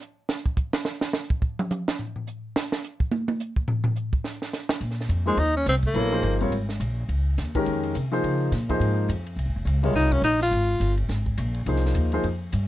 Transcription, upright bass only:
0, 0, Header, 1, 2, 480
1, 0, Start_track
1, 0, Tempo, 283286
1, 478, Time_signature, 4, 2, 24, 8
1, 9118, Tempo, 285714
1, 21375, End_track
2, 0, Start_track
2, 0, Title_t, "Upright bass"
2, 0, Program_c, 0, 32
2, 8144, Note_on_c, 0, 46, 77
2, 8611, Note_off_c, 0, 46, 0
2, 8621, Note_on_c, 0, 41, 80
2, 9087, Note_off_c, 0, 41, 0
2, 9097, Note_on_c, 0, 39, 77
2, 9571, Note_off_c, 0, 39, 0
2, 9587, Note_on_c, 0, 36, 86
2, 10044, Note_off_c, 0, 36, 0
2, 10054, Note_on_c, 0, 34, 80
2, 10516, Note_off_c, 0, 34, 0
2, 10526, Note_on_c, 0, 31, 86
2, 10986, Note_off_c, 0, 31, 0
2, 10996, Note_on_c, 0, 32, 69
2, 11479, Note_off_c, 0, 32, 0
2, 11499, Note_on_c, 0, 34, 86
2, 11971, Note_off_c, 0, 34, 0
2, 11982, Note_on_c, 0, 37, 76
2, 12452, Note_off_c, 0, 37, 0
2, 12474, Note_on_c, 0, 39, 87
2, 12939, Note_off_c, 0, 39, 0
2, 12965, Note_on_c, 0, 41, 73
2, 13424, Note_off_c, 0, 41, 0
2, 13435, Note_on_c, 0, 48, 81
2, 13899, Note_off_c, 0, 48, 0
2, 13915, Note_on_c, 0, 49, 75
2, 14375, Note_off_c, 0, 49, 0
2, 14385, Note_on_c, 0, 46, 82
2, 14848, Note_off_c, 0, 46, 0
2, 14858, Note_on_c, 0, 44, 77
2, 15331, Note_off_c, 0, 44, 0
2, 15341, Note_on_c, 0, 41, 86
2, 15797, Note_off_c, 0, 41, 0
2, 15807, Note_on_c, 0, 36, 72
2, 15970, Note_on_c, 0, 32, 51
2, 15995, Note_off_c, 0, 36, 0
2, 16128, Note_off_c, 0, 32, 0
2, 16138, Note_on_c, 0, 29, 61
2, 16281, Note_off_c, 0, 29, 0
2, 16291, Note_on_c, 0, 37, 82
2, 16762, Note_off_c, 0, 37, 0
2, 16772, Note_on_c, 0, 36, 76
2, 17231, Note_off_c, 0, 36, 0
2, 17241, Note_on_c, 0, 34, 83
2, 17723, Note_off_c, 0, 34, 0
2, 17738, Note_on_c, 0, 32, 78
2, 18212, Note_off_c, 0, 32, 0
2, 18221, Note_on_c, 0, 31, 85
2, 18694, Note_off_c, 0, 31, 0
2, 18702, Note_on_c, 0, 32, 74
2, 19175, Note_off_c, 0, 32, 0
2, 19197, Note_on_c, 0, 34, 95
2, 19657, Note_off_c, 0, 34, 0
2, 19667, Note_on_c, 0, 36, 80
2, 20127, Note_off_c, 0, 36, 0
2, 20137, Note_on_c, 0, 39, 87
2, 20612, Note_off_c, 0, 39, 0
2, 20632, Note_on_c, 0, 41, 68
2, 21101, Note_off_c, 0, 41, 0
2, 21127, Note_on_c, 0, 43, 86
2, 21375, Note_off_c, 0, 43, 0
2, 21375, End_track
0, 0, End_of_file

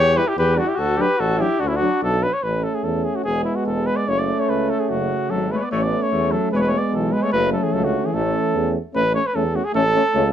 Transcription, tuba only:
0, 0, Header, 1, 2, 480
1, 0, Start_track
1, 0, Key_signature, 3, "major"
1, 0, Tempo, 410959
1, 912, Time_signature, 2, 2, 24, 8
1, 6670, Tempo, 402955
1, 12170, End_track
2, 0, Start_track
2, 0, Title_t, "Tuba"
2, 0, Program_c, 0, 58
2, 0, Note_on_c, 0, 40, 98
2, 216, Note_off_c, 0, 40, 0
2, 432, Note_on_c, 0, 40, 109
2, 696, Note_off_c, 0, 40, 0
2, 917, Note_on_c, 0, 38, 101
2, 1180, Note_off_c, 0, 38, 0
2, 1397, Note_on_c, 0, 33, 99
2, 1660, Note_off_c, 0, 33, 0
2, 1882, Note_on_c, 0, 38, 96
2, 2144, Note_off_c, 0, 38, 0
2, 2363, Note_on_c, 0, 35, 88
2, 2625, Note_off_c, 0, 35, 0
2, 2842, Note_on_c, 0, 33, 72
2, 3105, Note_off_c, 0, 33, 0
2, 3313, Note_on_c, 0, 40, 67
2, 3578, Note_off_c, 0, 40, 0
2, 3790, Note_on_c, 0, 28, 71
2, 4056, Note_off_c, 0, 28, 0
2, 4271, Note_on_c, 0, 28, 72
2, 4537, Note_off_c, 0, 28, 0
2, 4761, Note_on_c, 0, 30, 84
2, 5024, Note_off_c, 0, 30, 0
2, 5244, Note_on_c, 0, 37, 63
2, 5505, Note_off_c, 0, 37, 0
2, 5715, Note_on_c, 0, 30, 77
2, 5978, Note_off_c, 0, 30, 0
2, 6201, Note_on_c, 0, 32, 71
2, 6461, Note_off_c, 0, 32, 0
2, 6685, Note_on_c, 0, 33, 90
2, 6947, Note_off_c, 0, 33, 0
2, 7167, Note_on_c, 0, 40, 81
2, 7429, Note_off_c, 0, 40, 0
2, 7639, Note_on_c, 0, 28, 79
2, 7905, Note_off_c, 0, 28, 0
2, 8117, Note_on_c, 0, 35, 65
2, 8384, Note_off_c, 0, 35, 0
2, 8598, Note_on_c, 0, 30, 99
2, 8864, Note_off_c, 0, 30, 0
2, 9078, Note_on_c, 0, 37, 81
2, 9344, Note_off_c, 0, 37, 0
2, 9559, Note_on_c, 0, 33, 92
2, 9824, Note_off_c, 0, 33, 0
2, 10050, Note_on_c, 0, 40, 81
2, 10312, Note_off_c, 0, 40, 0
2, 10532, Note_on_c, 0, 33, 79
2, 10792, Note_off_c, 0, 33, 0
2, 11010, Note_on_c, 0, 40, 79
2, 11268, Note_off_c, 0, 40, 0
2, 11477, Note_on_c, 0, 33, 88
2, 11737, Note_off_c, 0, 33, 0
2, 11953, Note_on_c, 0, 37, 108
2, 12170, Note_off_c, 0, 37, 0
2, 12170, End_track
0, 0, End_of_file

